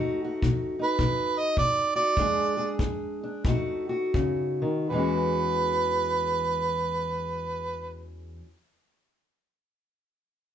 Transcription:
Already playing: steel-string acoustic guitar B2 A3 D#4 F#4
0.25 steel-string acoustic guitar F#4
0.42 steel-string acoustic guitar B2, kick
0.79 steel-string acoustic guitar D#4, harmonica B4
0.99 steel-string acoustic guitar B2, kick
1.39 harmonica D#5
1.57 steel-string acoustic guitar B2, harmonica D5, kick
1.96 steel-string acoustic guitar F#4, harmonica D5
2.17 steel-string acoustic guitar E2 G#3 D4 G#4, kick
2.57 steel-string acoustic guitar G#4
2.79 steel-string acoustic guitar E2, kick
3.23 steel-string acoustic guitar D4
3.45 steel-string acoustic guitar B2 A3 D#4, kick
3.49 steel-string acoustic guitar F#4
3.89 steel-string acoustic guitar F#4
4.14 steel-string acoustic guitar C#3, kick
4.62 steel-string acoustic guitar D#3
4.90 steel-string acoustic guitar E2 E3, harmonica B4
4.94 steel-string acoustic guitar G#3 C#4
4.99 steel-string acoustic guitar F#4

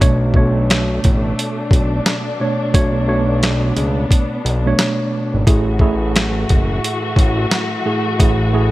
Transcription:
0.00 analog synth bass B1, tine electric piano B2 A3 D4 C#5, string section B2 A3 D4, kick, closed hi-hat
0.34 tine electric piano B2 A3 D4 C#5, kick
0.70 snare, closed hi-hat
1.04 analog synth bass A1, kick, closed hi-hat
1.39 closed hi-hat
1.71 analog synth bass B1, kick, closed hi-hat
2.06 snare, closed hi-hat
2.40 tine electric piano B2 A3 D4 C#5
2.74 analog synth bass B1, tine electric piano B2 A3 D4 C#5, string section B3, kick, closed hi-hat
3.08 tine electric piano B2 A3 D4 C#5
3.43 snare, closed hi-hat
3.77 analog synth bass C#2, closed hi-hat
4.11 kick, closed hi-hat
4.45 analog synth bass B1, closed hi-hat
4.66 tine electric piano B2 A3 D4 C#5
4.79 snare, closed hi-hat
5.34 analog synth bass G#1
5.46 analog synth bass A1, tine electric piano A2 A3 E4 G#4, string section E3 A3 F#4, kick, closed hi-hat
5.79 tine electric piano A2 A3 E4 G#4, kick
6.16 snare, closed hi-hat
6.49 analog synth bass F#1, kick, closed hi-hat
6.84 closed hi-hat
7.16 analog synth bass A1, kick, closed hi-hat
7.51 snare, closed hi-hat
7.85 tine electric piano A2 A3 E4 G#4
8.19 analog synth bass A1, tine electric piano A2 A3 E4 G#4, kick, closed hi-hat
8.53 tine electric piano A2 A3 E4 G#4

